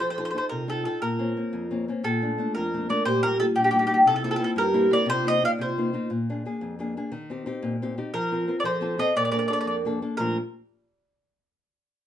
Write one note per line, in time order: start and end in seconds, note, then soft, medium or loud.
0.01 0.33 F3 medium
0.10 0.16 C5 medium
0.15 0.34 D#4 soft
0.15 0.21 A4 medium
0.15 0.23 C5 medium
0.19 0.33 F4 soft
0.19 0.35 A4 soft
0.19 0.28 A4 soft
0.25 0.29 C5 medium
0.31 0.62 D#4 soft
0.31 0.36 A4 medium
0.31 0.37 C5 medium
0.35 0.62 F4 soft
0.35 0.62 A4 soft
0.35 0.44 C5 medium
0.49 0.84 C3 medium
0.49 0.67 F4 medium
0.49 0.66 A#4 medium
0.68 0.85 D#4 soft
0.68 0.85 F4 soft
0.68 0.83 F4 medium
0.68 0.85 A4 medium
0.68 0.84 A4 medium
0.84 0.98 D#4 soft
0.84 0.99 F4 medium
0.84 0.98 F4 soft
0.84 0.99 A4 medium
0.84 0.98 A4 medium
1.00 1.35 A#2 medium
1.00 1.83 F4 medium
1.00 1.84 A#4 medium
1.19 1.36 A#3 soft
1.19 1.36 C4 soft
1.19 1.36 C#4 soft
1.37 1.65 A#3 soft
1.37 1.65 C4 soft
1.37 1.64 C#4 soft
1.53 1.86 F2 medium
1.71 1.87 A#3 soft
1.71 1.88 C4 soft
1.71 1.88 C#4 soft
1.88 2.01 A#3 soft
1.88 2.01 C4 soft
1.88 2.02 C#4 soft
2.04 2.37 A#2 medium
2.04 2.51 F4 medium
2.04 2.52 A4 medium
2.22 2.37 A3 soft
2.22 2.37 A#3 soft
2.22 2.38 D4 soft
2.38 2.66 A3 soft
2.38 2.66 A#3 soft
2.38 2.67 D4 medium
2.55 2.89 F2 medium
2.55 2.88 F4 medium
2.55 2.87 A#4 medium
2.74 2.88 A3 soft
2.74 2.88 A#3 soft
2.74 2.89 D4 medium
2.89 3.02 A3 soft
2.89 3.02 A#3 soft
2.89 3.03 D4 medium
2.89 3.04 A#4 medium
2.89 3.05 D5 medium
3.05 3.39 A#2 medium
3.05 3.23 G4 medium
3.05 3.22 C5 medium
3.23 3.38 A#3 soft
3.23 3.39 F4 soft
3.23 3.38 A#4 medium
3.39 3.67 G3 soft
3.39 3.67 A#3 soft
3.39 3.67 F4 soft
3.39 3.49 F4 medium
3.39 3.45 A4 medium
3.55 3.89 A#2 medium
3.55 3.63 G4 medium
3.60 3.65 D4 medium
3.64 3.73 D#4 soft
3.64 3.70 G4 medium
3.71 3.88 G3 medium
3.71 3.88 A#3 soft
3.71 3.80 D#4 medium
3.71 3.89 F4 medium
3.71 3.78 G4 medium
3.79 3.87 D#4 medium
3.79 3.85 G4 medium
3.87 4.02 G3 soft
3.87 4.02 A#3 soft
3.87 3.94 D#4 medium
3.87 4.03 F4 soft
3.87 3.93 G4 medium
3.94 4.01 D#4 soft
3.94 4.00 G4 medium
4.05 4.39 C3 medium
4.05 4.14 A4 medium
4.10 4.15 E4 medium
4.16 4.23 F4 medium
4.16 4.22 A4 medium
4.23 4.38 A#3 soft
4.23 4.39 C4 soft
4.23 4.38 E4 soft
4.23 4.31 F4 medium
4.23 4.30 A4 medium
4.31 4.37 F4 medium
4.31 4.35 A4 medium
4.36 4.67 A#3 soft
4.36 4.67 C4 soft
4.36 4.67 E4 medium
4.36 4.44 F4 medium
4.36 4.42 A4 medium
4.44 4.51 F4 medium
4.44 4.50 A4 medium
4.56 4.89 G2 medium
4.56 4.90 G4 medium
4.56 4.93 A#4 medium
4.74 4.90 A#3 medium
4.74 4.89 C4 medium
4.74 4.89 E4 medium
4.90 5.04 A#3 medium
4.90 5.03 C4 soft
4.90 5.04 E4 medium
4.90 5.06 A#4 medium
4.90 5.07 D5 medium
5.06 5.40 C3 medium
5.06 5.25 F4 medium
5.06 5.27 C5 loud
5.24 5.41 A#3 soft
5.24 5.41 D#4 soft
5.24 5.42 F4 soft
5.24 5.42 C5 medium
5.24 5.42 D#5 loud
5.42 5.71 A#3 soft
5.42 5.70 D#4 soft
5.42 5.71 F4 soft
5.42 5.52 D5 medium
5.42 5.50 F5 medium
5.59 5.93 C3 medium
5.59 6.09 F4 medium
5.59 6.08 C5 medium
5.78 5.92 A#3 soft
5.78 5.93 D#4 soft
5.78 5.93 F4 soft
5.93 6.07 A#3 soft
5.93 6.07 D#4 soft
5.93 6.07 F4 medium
6.10 6.44 A#2 medium
6.29 6.44 A#3 soft
6.29 6.45 D4 soft
6.29 6.45 G#4 soft
6.45 6.74 A#3 soft
6.45 6.74 D4 soft
6.45 6.74 G#4 soft
6.61 6.96 F2 medium
6.79 6.96 A#3 soft
6.79 6.96 D4 soft
6.79 6.96 G#4 medium
6.97 7.10 A#3 soft
6.97 7.10 D4 soft
6.97 7.10 G#4 medium
7.12 7.46 D#3 medium
7.30 7.45 C4 soft
7.30 7.45 D#4 soft
7.30 7.46 G4 soft
7.46 7.74 C4 soft
7.46 7.74 D#4 soft
7.46 7.75 G4 medium
7.62 7.96 A#2 medium
7.82 7.96 C4 medium
7.82 7.97 D#4 soft
7.82 7.97 G4 medium
7.98 8.11 C4 medium
7.98 8.11 D#4 medium
7.98 8.11 G4 medium
8.14 8.48 F3 medium
8.14 8.55 F4 medium
8.14 8.55 A#4 medium
8.32 8.46 C4 soft
8.32 8.47 F4 soft
8.32 8.47 A#4 soft
8.47 8.61 C4 soft
8.47 8.62 F4 soft
8.47 8.62 A#4 soft
8.59 8.65 A#4 medium
8.59 8.65 D5 medium
8.64 8.98 F3 medium
8.64 8.97 A4 medium
8.64 8.98 C5 medium
8.81 8.97 C4 medium
8.81 8.98 F4 soft
8.81 8.98 A4 medium
8.98 9.12 C4 medium
8.98 9.12 F4 soft
8.98 9.12 A4 medium
8.98 9.15 C5 medium
8.98 9.16 D#5 medium
9.16 9.50 A#2 medium
9.16 9.23 A#4 medium
9.16 9.24 D5 medium
9.24 9.31 A#4 soft
9.24 9.30 D5 medium
9.32 9.49 A#3 soft
9.32 9.48 D4 soft
9.32 9.49 A4 soft
9.32 9.40 A#4 medium
9.32 9.38 D5 medium
9.39 9.47 A#4 medium
9.39 9.46 D5 medium
9.48 9.79 A#3 soft
9.48 9.78 D4 soft
9.48 9.79 A4 medium
9.48 9.55 A#4 medium
9.48 9.52 D5 medium
9.53 9.61 A#4 medium
9.53 9.59 D5 medium
9.61 9.69 A#4 medium
9.61 9.66 D5 medium
9.65 10.01 F2 medium
9.65 9.75 D5 soft
9.71 9.77 A#4 medium
9.85 10.01 A#3 medium
9.85 10.01 D4 soft
9.85 10.01 A4 medium
10.02 10.16 A#3 soft
10.02 10.16 D4 soft
10.02 10.16 A4 soft
10.17 10.37 A#2 medium
10.17 10.37 F3 soft
10.17 10.37 A3 medium
10.17 10.38 D4 soft
10.17 10.38 F4 medium
10.17 10.36 A#4 medium